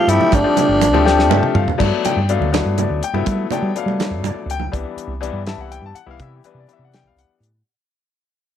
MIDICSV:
0, 0, Header, 1, 6, 480
1, 0, Start_track
1, 0, Key_signature, 1, "major"
1, 0, Tempo, 488998
1, 322, Time_signature, 6, 3, 24, 8
1, 8404, End_track
2, 0, Start_track
2, 0, Title_t, "Alto saxophone"
2, 0, Program_c, 0, 65
2, 0, Note_on_c, 0, 65, 100
2, 96, Note_on_c, 0, 64, 90
2, 111, Note_off_c, 0, 65, 0
2, 338, Note_on_c, 0, 62, 83
2, 352, Note_off_c, 0, 64, 0
2, 1528, Note_off_c, 0, 62, 0
2, 8404, End_track
3, 0, Start_track
3, 0, Title_t, "Grand piano"
3, 0, Program_c, 1, 0
3, 77, Note_on_c, 1, 53, 67
3, 80, Note_on_c, 1, 57, 64
3, 83, Note_on_c, 1, 60, 63
3, 85, Note_on_c, 1, 67, 72
3, 364, Note_off_c, 1, 53, 0
3, 365, Note_off_c, 1, 57, 0
3, 367, Note_off_c, 1, 60, 0
3, 367, Note_off_c, 1, 67, 0
3, 431, Note_on_c, 1, 60, 54
3, 432, Note_on_c, 1, 53, 64
3, 432, Note_on_c, 1, 67, 69
3, 433, Note_on_c, 1, 57, 58
3, 814, Note_off_c, 1, 60, 0
3, 815, Note_off_c, 1, 53, 0
3, 815, Note_off_c, 1, 67, 0
3, 816, Note_off_c, 1, 57, 0
3, 914, Note_on_c, 1, 57, 73
3, 918, Note_on_c, 1, 60, 72
3, 919, Note_on_c, 1, 67, 88
3, 921, Note_on_c, 1, 53, 78
3, 1012, Note_off_c, 1, 57, 0
3, 1014, Note_off_c, 1, 60, 0
3, 1015, Note_off_c, 1, 67, 0
3, 1016, Note_off_c, 1, 53, 0
3, 1032, Note_on_c, 1, 57, 69
3, 1034, Note_on_c, 1, 53, 82
3, 1034, Note_on_c, 1, 60, 73
3, 1040, Note_on_c, 1, 67, 86
3, 1271, Note_on_c, 1, 76, 65
3, 1498, Note_off_c, 1, 76, 0
3, 1523, Note_on_c, 1, 77, 63
3, 1604, Note_off_c, 1, 57, 0
3, 1605, Note_off_c, 1, 53, 0
3, 1605, Note_off_c, 1, 60, 0
3, 1608, Note_off_c, 1, 67, 0
3, 1745, Note_off_c, 1, 77, 0
3, 1746, Note_on_c, 1, 54, 73
3, 1750, Note_on_c, 1, 57, 67
3, 1750, Note_on_c, 1, 59, 63
3, 1755, Note_on_c, 1, 62, 81
3, 2017, Note_on_c, 1, 79, 75
3, 2132, Note_off_c, 1, 54, 0
3, 2133, Note_off_c, 1, 57, 0
3, 2134, Note_off_c, 1, 59, 0
3, 2136, Note_off_c, 1, 62, 0
3, 2241, Note_off_c, 1, 79, 0
3, 2248, Note_on_c, 1, 54, 62
3, 2253, Note_on_c, 1, 62, 74
3, 2254, Note_on_c, 1, 57, 58
3, 2254, Note_on_c, 1, 59, 54
3, 2264, Note_on_c, 1, 77, 61
3, 2433, Note_off_c, 1, 54, 0
3, 2435, Note_off_c, 1, 62, 0
3, 2436, Note_off_c, 1, 57, 0
3, 2436, Note_off_c, 1, 59, 0
3, 2474, Note_on_c, 1, 54, 56
3, 2479, Note_on_c, 1, 59, 52
3, 2481, Note_on_c, 1, 57, 52
3, 2485, Note_on_c, 1, 62, 63
3, 2699, Note_off_c, 1, 77, 0
3, 2755, Note_on_c, 1, 74, 47
3, 2950, Note_off_c, 1, 54, 0
3, 2953, Note_off_c, 1, 57, 0
3, 2953, Note_off_c, 1, 59, 0
3, 2955, Note_off_c, 1, 62, 0
3, 2971, Note_off_c, 1, 74, 0
3, 2984, Note_on_c, 1, 79, 77
3, 3082, Note_on_c, 1, 64, 72
3, 3083, Note_on_c, 1, 54, 65
3, 3085, Note_on_c, 1, 59, 60
3, 3087, Note_on_c, 1, 57, 60
3, 3175, Note_off_c, 1, 64, 0
3, 3176, Note_off_c, 1, 54, 0
3, 3177, Note_off_c, 1, 59, 0
3, 3178, Note_off_c, 1, 57, 0
3, 3205, Note_off_c, 1, 79, 0
3, 3207, Note_on_c, 1, 54, 60
3, 3207, Note_on_c, 1, 57, 55
3, 3208, Note_on_c, 1, 59, 53
3, 3208, Note_on_c, 1, 64, 67
3, 3392, Note_off_c, 1, 54, 0
3, 3393, Note_off_c, 1, 57, 0
3, 3393, Note_off_c, 1, 59, 0
3, 3393, Note_off_c, 1, 64, 0
3, 3448, Note_on_c, 1, 62, 72
3, 3449, Note_on_c, 1, 54, 70
3, 3451, Note_on_c, 1, 57, 56
3, 3451, Note_on_c, 1, 59, 61
3, 3463, Note_on_c, 1, 79, 76
3, 3633, Note_off_c, 1, 54, 0
3, 3633, Note_off_c, 1, 62, 0
3, 3634, Note_off_c, 1, 59, 0
3, 3635, Note_off_c, 1, 57, 0
3, 3684, Note_off_c, 1, 79, 0
3, 3686, Note_on_c, 1, 62, 67
3, 3689, Note_on_c, 1, 54, 59
3, 3691, Note_on_c, 1, 57, 56
3, 3691, Note_on_c, 1, 59, 55
3, 3710, Note_on_c, 1, 77, 67
3, 4142, Note_off_c, 1, 77, 0
3, 4184, Note_on_c, 1, 74, 45
3, 4405, Note_off_c, 1, 74, 0
3, 4425, Note_on_c, 1, 79, 84
3, 4440, Note_off_c, 1, 62, 0
3, 4442, Note_off_c, 1, 54, 0
3, 4442, Note_off_c, 1, 59, 0
3, 4443, Note_off_c, 1, 57, 0
3, 4562, Note_off_c, 1, 79, 0
3, 4630, Note_on_c, 1, 59, 54
3, 4633, Note_on_c, 1, 55, 52
3, 4635, Note_on_c, 1, 52, 57
3, 4637, Note_on_c, 1, 62, 65
3, 5014, Note_off_c, 1, 59, 0
3, 5015, Note_off_c, 1, 55, 0
3, 5016, Note_off_c, 1, 52, 0
3, 5017, Note_off_c, 1, 62, 0
3, 5110, Note_on_c, 1, 52, 75
3, 5119, Note_on_c, 1, 55, 63
3, 5119, Note_on_c, 1, 62, 78
3, 5120, Note_on_c, 1, 59, 67
3, 5304, Note_off_c, 1, 52, 0
3, 5309, Note_off_c, 1, 55, 0
3, 5309, Note_off_c, 1, 59, 0
3, 5309, Note_off_c, 1, 62, 0
3, 5367, Note_on_c, 1, 55, 52
3, 5368, Note_on_c, 1, 64, 61
3, 5369, Note_on_c, 1, 59, 52
3, 5371, Note_on_c, 1, 52, 60
3, 5378, Note_on_c, 1, 81, 72
3, 5486, Note_off_c, 1, 81, 0
3, 5505, Note_on_c, 1, 78, 62
3, 5609, Note_off_c, 1, 78, 0
3, 5610, Note_on_c, 1, 79, 71
3, 5722, Note_off_c, 1, 79, 0
3, 5751, Note_on_c, 1, 81, 71
3, 5837, Note_off_c, 1, 55, 0
3, 5838, Note_off_c, 1, 59, 0
3, 5838, Note_off_c, 1, 64, 0
3, 5839, Note_off_c, 1, 52, 0
3, 5841, Note_on_c, 1, 78, 75
3, 5853, Note_off_c, 1, 81, 0
3, 5952, Note_on_c, 1, 55, 54
3, 5953, Note_on_c, 1, 64, 65
3, 5955, Note_on_c, 1, 59, 57
3, 5956, Note_on_c, 1, 52, 61
3, 5957, Note_off_c, 1, 78, 0
3, 5993, Note_on_c, 1, 77, 68
3, 6051, Note_off_c, 1, 55, 0
3, 6051, Note_off_c, 1, 64, 0
3, 6053, Note_off_c, 1, 52, 0
3, 6053, Note_off_c, 1, 59, 0
3, 6085, Note_on_c, 1, 59, 52
3, 6090, Note_on_c, 1, 52, 56
3, 6091, Note_on_c, 1, 55, 51
3, 6091, Note_on_c, 1, 64, 62
3, 6094, Note_off_c, 1, 77, 0
3, 6109, Note_on_c, 1, 76, 64
3, 6212, Note_off_c, 1, 76, 0
3, 6240, Note_on_c, 1, 67, 41
3, 6272, Note_off_c, 1, 59, 0
3, 6275, Note_off_c, 1, 52, 0
3, 6275, Note_off_c, 1, 55, 0
3, 6275, Note_off_c, 1, 64, 0
3, 6326, Note_on_c, 1, 52, 57
3, 6331, Note_on_c, 1, 55, 55
3, 6333, Note_on_c, 1, 59, 55
3, 6336, Note_on_c, 1, 62, 68
3, 6337, Note_off_c, 1, 67, 0
3, 6345, Note_on_c, 1, 71, 63
3, 6450, Note_off_c, 1, 71, 0
3, 6476, Note_on_c, 1, 74, 55
3, 6513, Note_off_c, 1, 52, 0
3, 6516, Note_off_c, 1, 55, 0
3, 6516, Note_off_c, 1, 59, 0
3, 6518, Note_off_c, 1, 62, 0
3, 6559, Note_on_c, 1, 55, 49
3, 6561, Note_on_c, 1, 52, 55
3, 6561, Note_on_c, 1, 59, 49
3, 6562, Note_on_c, 1, 62, 59
3, 6576, Note_off_c, 1, 74, 0
3, 6607, Note_on_c, 1, 76, 59
3, 6701, Note_off_c, 1, 76, 0
3, 6720, Note_on_c, 1, 78, 63
3, 6818, Note_off_c, 1, 78, 0
3, 6819, Note_on_c, 1, 79, 78
3, 6927, Note_off_c, 1, 79, 0
3, 6942, Note_on_c, 1, 77, 61
3, 7049, Note_off_c, 1, 77, 0
3, 7055, Note_on_c, 1, 78, 68
3, 7195, Note_off_c, 1, 78, 0
3, 7318, Note_off_c, 1, 55, 0
3, 7319, Note_off_c, 1, 52, 0
3, 7319, Note_off_c, 1, 59, 0
3, 7320, Note_off_c, 1, 62, 0
3, 8404, End_track
4, 0, Start_track
4, 0, Title_t, "Fingered electric bass"
4, 0, Program_c, 2, 33
4, 74, Note_on_c, 2, 43, 85
4, 177, Note_off_c, 2, 43, 0
4, 323, Note_on_c, 2, 31, 86
4, 422, Note_off_c, 2, 31, 0
4, 674, Note_on_c, 2, 31, 86
4, 915, Note_off_c, 2, 31, 0
4, 915, Note_on_c, 2, 38, 77
4, 1288, Note_off_c, 2, 38, 0
4, 1288, Note_on_c, 2, 43, 78
4, 1384, Note_off_c, 2, 43, 0
4, 1522, Note_on_c, 2, 43, 85
4, 1621, Note_off_c, 2, 43, 0
4, 1769, Note_on_c, 2, 43, 80
4, 1865, Note_off_c, 2, 43, 0
4, 2124, Note_on_c, 2, 43, 73
4, 2321, Note_off_c, 2, 43, 0
4, 2355, Note_on_c, 2, 38, 81
4, 2556, Note_off_c, 2, 38, 0
4, 2607, Note_on_c, 2, 43, 82
4, 2802, Note_off_c, 2, 43, 0
4, 2846, Note_on_c, 2, 38, 67
4, 2943, Note_off_c, 2, 38, 0
4, 3078, Note_on_c, 2, 43, 71
4, 3178, Note_off_c, 2, 43, 0
4, 3206, Note_on_c, 2, 55, 84
4, 3402, Note_off_c, 2, 55, 0
4, 3558, Note_on_c, 2, 55, 81
4, 3658, Note_off_c, 2, 55, 0
4, 3790, Note_on_c, 2, 55, 75
4, 4030, Note_on_c, 2, 42, 70
4, 4044, Note_off_c, 2, 55, 0
4, 4133, Note_off_c, 2, 42, 0
4, 4149, Note_on_c, 2, 43, 75
4, 4253, Note_off_c, 2, 43, 0
4, 4377, Note_on_c, 2, 37, 69
4, 4585, Note_off_c, 2, 37, 0
4, 4652, Note_on_c, 2, 36, 78
4, 4746, Note_off_c, 2, 36, 0
4, 4980, Note_on_c, 2, 36, 73
4, 5187, Note_off_c, 2, 36, 0
4, 5230, Note_on_c, 2, 43, 77
4, 5433, Note_off_c, 2, 43, 0
4, 5474, Note_on_c, 2, 36, 79
4, 5676, Note_off_c, 2, 36, 0
4, 5710, Note_on_c, 2, 43, 64
4, 5814, Note_off_c, 2, 43, 0
4, 5954, Note_on_c, 2, 36, 65
4, 6056, Note_off_c, 2, 36, 0
4, 6081, Note_on_c, 2, 48, 82
4, 6280, Note_off_c, 2, 48, 0
4, 6424, Note_on_c, 2, 48, 72
4, 6530, Note_off_c, 2, 48, 0
4, 6666, Note_on_c, 2, 48, 65
4, 6908, Note_on_c, 2, 35, 60
4, 6922, Note_off_c, 2, 48, 0
4, 7013, Note_off_c, 2, 35, 0
4, 7024, Note_on_c, 2, 36, 65
4, 7131, Note_off_c, 2, 36, 0
4, 7266, Note_on_c, 2, 45, 65
4, 7472, Note_off_c, 2, 45, 0
4, 8404, End_track
5, 0, Start_track
5, 0, Title_t, "Muted fingered electric bass strokes"
5, 558, Note_on_c, 9, 29, 36
5, 656, Note_off_c, 9, 29, 0
5, 2012, Note_on_c, 9, 29, 33
5, 2110, Note_off_c, 9, 29, 0
5, 2958, Note_on_c, 9, 29, 30
5, 3056, Note_off_c, 9, 29, 0
5, 3437, Note_on_c, 9, 29, 30
5, 3536, Note_off_c, 9, 29, 0
5, 4270, Note_on_c, 9, 29, 29
5, 4368, Note_off_c, 9, 29, 0
5, 4874, Note_on_c, 9, 29, 32
5, 4972, Note_off_c, 9, 29, 0
5, 5831, Note_on_c, 9, 29, 30
5, 5929, Note_off_c, 9, 29, 0
5, 8404, End_track
6, 0, Start_track
6, 0, Title_t, "Drums"
6, 85, Note_on_c, 9, 42, 63
6, 183, Note_off_c, 9, 42, 0
6, 202, Note_on_c, 9, 63, 63
6, 202, Note_on_c, 9, 64, 61
6, 301, Note_off_c, 9, 63, 0
6, 301, Note_off_c, 9, 64, 0
6, 314, Note_on_c, 9, 62, 81
6, 323, Note_on_c, 9, 36, 104
6, 324, Note_on_c, 9, 42, 76
6, 412, Note_off_c, 9, 62, 0
6, 421, Note_off_c, 9, 36, 0
6, 422, Note_off_c, 9, 42, 0
6, 558, Note_on_c, 9, 63, 81
6, 558, Note_on_c, 9, 64, 84
6, 560, Note_on_c, 9, 42, 58
6, 656, Note_off_c, 9, 63, 0
6, 656, Note_off_c, 9, 64, 0
6, 658, Note_off_c, 9, 42, 0
6, 799, Note_on_c, 9, 62, 86
6, 804, Note_on_c, 9, 42, 55
6, 897, Note_off_c, 9, 62, 0
6, 903, Note_off_c, 9, 42, 0
6, 928, Note_on_c, 9, 63, 68
6, 928, Note_on_c, 9, 64, 67
6, 1026, Note_off_c, 9, 63, 0
6, 1026, Note_off_c, 9, 64, 0
6, 1049, Note_on_c, 9, 38, 55
6, 1147, Note_off_c, 9, 38, 0
6, 1168, Note_on_c, 9, 38, 50
6, 1266, Note_off_c, 9, 38, 0
6, 1284, Note_on_c, 9, 62, 87
6, 1284, Note_on_c, 9, 63, 84
6, 1284, Note_on_c, 9, 64, 85
6, 1382, Note_off_c, 9, 62, 0
6, 1382, Note_off_c, 9, 63, 0
6, 1382, Note_off_c, 9, 64, 0
6, 1403, Note_on_c, 9, 47, 62
6, 1408, Note_on_c, 9, 63, 47
6, 1501, Note_off_c, 9, 47, 0
6, 1506, Note_off_c, 9, 63, 0
6, 1521, Note_on_c, 9, 45, 89
6, 1533, Note_on_c, 9, 64, 57
6, 1619, Note_off_c, 9, 45, 0
6, 1631, Note_off_c, 9, 64, 0
6, 1648, Note_on_c, 9, 43, 77
6, 1663, Note_on_c, 9, 64, 66
6, 1746, Note_off_c, 9, 43, 0
6, 1761, Note_off_c, 9, 64, 0
6, 1766, Note_on_c, 9, 49, 82
6, 1768, Note_on_c, 9, 36, 96
6, 1780, Note_on_c, 9, 62, 63
6, 1780, Note_on_c, 9, 64, 21
6, 1865, Note_off_c, 9, 49, 0
6, 1866, Note_off_c, 9, 36, 0
6, 1878, Note_off_c, 9, 62, 0
6, 1878, Note_off_c, 9, 64, 0
6, 2009, Note_on_c, 9, 42, 52
6, 2018, Note_on_c, 9, 63, 69
6, 2018, Note_on_c, 9, 64, 71
6, 2107, Note_off_c, 9, 42, 0
6, 2116, Note_off_c, 9, 63, 0
6, 2116, Note_off_c, 9, 64, 0
6, 2148, Note_on_c, 9, 64, 23
6, 2246, Note_off_c, 9, 64, 0
6, 2247, Note_on_c, 9, 42, 50
6, 2346, Note_off_c, 9, 42, 0
6, 2374, Note_on_c, 9, 63, 59
6, 2374, Note_on_c, 9, 64, 54
6, 2472, Note_off_c, 9, 63, 0
6, 2472, Note_off_c, 9, 64, 0
6, 2491, Note_on_c, 9, 42, 71
6, 2494, Note_on_c, 9, 62, 79
6, 2499, Note_on_c, 9, 38, 99
6, 2590, Note_off_c, 9, 42, 0
6, 2592, Note_off_c, 9, 62, 0
6, 2598, Note_off_c, 9, 38, 0
6, 2614, Note_on_c, 9, 64, 24
6, 2713, Note_off_c, 9, 64, 0
6, 2727, Note_on_c, 9, 42, 56
6, 2731, Note_on_c, 9, 63, 72
6, 2731, Note_on_c, 9, 64, 75
6, 2825, Note_off_c, 9, 42, 0
6, 2829, Note_off_c, 9, 63, 0
6, 2829, Note_off_c, 9, 64, 0
6, 2972, Note_on_c, 9, 42, 58
6, 3070, Note_off_c, 9, 42, 0
6, 3087, Note_on_c, 9, 63, 60
6, 3087, Note_on_c, 9, 64, 61
6, 3185, Note_off_c, 9, 63, 0
6, 3185, Note_off_c, 9, 64, 0
6, 3202, Note_on_c, 9, 62, 74
6, 3202, Note_on_c, 9, 64, 24
6, 3206, Note_on_c, 9, 42, 68
6, 3209, Note_on_c, 9, 36, 90
6, 3300, Note_off_c, 9, 62, 0
6, 3300, Note_off_c, 9, 64, 0
6, 3305, Note_off_c, 9, 42, 0
6, 3307, Note_off_c, 9, 36, 0
6, 3441, Note_on_c, 9, 63, 77
6, 3441, Note_on_c, 9, 64, 81
6, 3454, Note_on_c, 9, 42, 58
6, 3539, Note_off_c, 9, 63, 0
6, 3539, Note_off_c, 9, 64, 0
6, 3552, Note_off_c, 9, 42, 0
6, 3565, Note_on_c, 9, 64, 26
6, 3664, Note_off_c, 9, 64, 0
6, 3686, Note_on_c, 9, 64, 26
6, 3689, Note_on_c, 9, 42, 53
6, 3784, Note_off_c, 9, 64, 0
6, 3787, Note_off_c, 9, 42, 0
6, 3810, Note_on_c, 9, 63, 64
6, 3810, Note_on_c, 9, 64, 67
6, 3908, Note_off_c, 9, 63, 0
6, 3908, Note_off_c, 9, 64, 0
6, 3925, Note_on_c, 9, 62, 84
6, 3928, Note_on_c, 9, 42, 70
6, 3935, Note_on_c, 9, 38, 91
6, 4024, Note_off_c, 9, 62, 0
6, 4026, Note_off_c, 9, 42, 0
6, 4034, Note_off_c, 9, 38, 0
6, 4041, Note_on_c, 9, 64, 25
6, 4139, Note_off_c, 9, 64, 0
6, 4163, Note_on_c, 9, 63, 84
6, 4163, Note_on_c, 9, 64, 82
6, 4171, Note_on_c, 9, 42, 54
6, 4261, Note_off_c, 9, 63, 0
6, 4261, Note_off_c, 9, 64, 0
6, 4269, Note_off_c, 9, 42, 0
6, 4416, Note_on_c, 9, 42, 53
6, 4512, Note_on_c, 9, 63, 62
6, 4512, Note_on_c, 9, 64, 63
6, 4514, Note_off_c, 9, 42, 0
6, 4610, Note_off_c, 9, 63, 0
6, 4610, Note_off_c, 9, 64, 0
6, 4648, Note_on_c, 9, 36, 82
6, 4652, Note_on_c, 9, 42, 67
6, 4746, Note_off_c, 9, 36, 0
6, 4750, Note_off_c, 9, 42, 0
6, 4888, Note_on_c, 9, 42, 49
6, 4986, Note_off_c, 9, 42, 0
6, 5133, Note_on_c, 9, 42, 49
6, 5232, Note_off_c, 9, 42, 0
6, 5366, Note_on_c, 9, 42, 61
6, 5373, Note_on_c, 9, 38, 89
6, 5464, Note_off_c, 9, 42, 0
6, 5472, Note_off_c, 9, 38, 0
6, 5612, Note_on_c, 9, 42, 49
6, 5710, Note_off_c, 9, 42, 0
6, 5846, Note_on_c, 9, 42, 48
6, 5944, Note_off_c, 9, 42, 0
6, 6082, Note_on_c, 9, 42, 58
6, 6083, Note_on_c, 9, 36, 90
6, 6180, Note_off_c, 9, 42, 0
6, 6181, Note_off_c, 9, 36, 0
6, 6323, Note_on_c, 9, 42, 48
6, 6421, Note_off_c, 9, 42, 0
6, 6566, Note_on_c, 9, 42, 47
6, 6664, Note_off_c, 9, 42, 0
6, 6808, Note_on_c, 9, 42, 63
6, 6816, Note_on_c, 9, 38, 82
6, 6907, Note_off_c, 9, 42, 0
6, 6914, Note_off_c, 9, 38, 0
6, 7053, Note_on_c, 9, 42, 52
6, 7151, Note_off_c, 9, 42, 0
6, 7297, Note_on_c, 9, 42, 49
6, 7395, Note_off_c, 9, 42, 0
6, 8404, End_track
0, 0, End_of_file